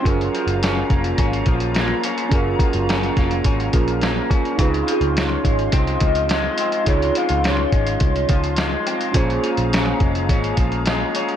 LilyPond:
<<
  \new Staff \with { instrumentName = "Analog synth pad" } { \time 4/4 \key des \major \tempo 4 = 106 << { <f' bes''>1~ | <f' bes''>1 | <f' c'''>1~ | <f' c'''>1 |
<aes' bes''>1 | } \\ { f''1~ | f''1 | f''1~ | f''1~ |
f''1 | } >> }
  \new Staff \with { instrumentName = "Soft synth lead" } { \time 4/4 \key des \major r1 | r1 | r8 aes'8 des''4 ees''4 ees''4 | des''8 f''8 des''2 r4 |
r1 | }
  \new Staff \with { instrumentName = "Tine electric piano" } { \time 4/4 \key des \major <des' f' aes' bes'>1 | <des' f' aes' bes'>2~ <des' f' aes' bes'>8 <des' f' aes' bes'>4. | <ees' f' aes' ces''>1 | <ees' f' aes'>1 |
<des' f' aes' c''>1 | }
  \new Staff \with { instrumentName = "Clean electric guitar" } { \time 4/4 \key des \major <ges, des'>8 f8 des'8 bes8 des'8 f8 bes8 des'8 | <ges, des'>8 f8 des'8 bes8 des'8 f8 bes8 des'8 | <des c'>8 f4 aes8 c'8 f8 aes8 c'8 | <des c'>8 f4 aes4 f8 aes8 c'8 |
<bes, des'>8 f8 des'8 aes8 des'8 f8 aes8 des'8 | }
  \new Staff \with { instrumentName = "Picked electric bass" } { \clef bass \time 4/4 \key des \major ges,,8 r16 ges,,8. f,,8 aes,,8 bes,,4 r8 | ges,,8 r16 ges,,8. f,,8 aes,,8 bes,,4 r8 | des,8 r16 des,8. aes,,8 c,8 des,4 r8 | des,8 r16 des,8. aes,,8 c,8 des,4 r8 |
bes,,8 r16 bes,,8. f,,8 aes,,8 bes,,4 r8 | }
  \new DrumStaff \with { instrumentName = "Drums" } \drummode { \time 4/4 <hh bd>16 hh16 hh16 hh16 <hh sn>8 <hh bd>16 hh16 <hh bd>16 hh16 <hh bd>16 hh16 <hh sn>8 hh16 hh16 | <hh bd>8 <hh bd>16 hh16 <hh sn>16 hh16 <hh bd sn>16 hh16 <hh bd>16 hh16 <hh bd>16 hh16 <hh sn>8 <hh bd>16 hh16 | <hh bd>16 hh16 hh16 hh16 <hh sn>8 <hh bd>16 hh16 <hh bd>16 hh16 <hh bd>16 hh16 <hh sn>8 hh16 hh16 | <hh bd>16 hh16 hh16 hh16 <hh sn>8 <hh bd>16 hh16 <hh bd>16 hh16 <hh bd>16 hh16 <hh sn>8 hh16 hh16 |
<hh bd>16 hh16 hh16 hh16 <hh sn>8 <hh bd>16 hh16 <hh bd>16 hh16 <hh bd>16 hh16 <hh sn>8 hh16 hh16 | }
>>